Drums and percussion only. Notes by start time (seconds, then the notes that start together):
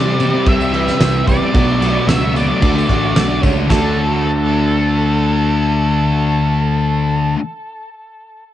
0.20 tambourine, crash
0.46 kick, tambourine, crash
0.61 tambourine
0.74 crash
0.87 snare, tambourine
1.01 snare, tambourine, crash
1.28 kick, tambourine, crash
1.55 kick, tambourine, crash
1.68 tambourine
1.82 tambourine, crash
1.96 tambourine
2.09 snare, tambourine, crash
2.23 tambourine
2.36 tambourine, crash
2.62 kick, crash
2.78 tambourine
2.89 kick, tambourine, crash
3.04 tambourine
3.16 snare, tambourine, crash
3.31 tambourine
3.43 kick, tambourine, crash
3.57 tambourine
3.70 kick, snare, tambourine, crash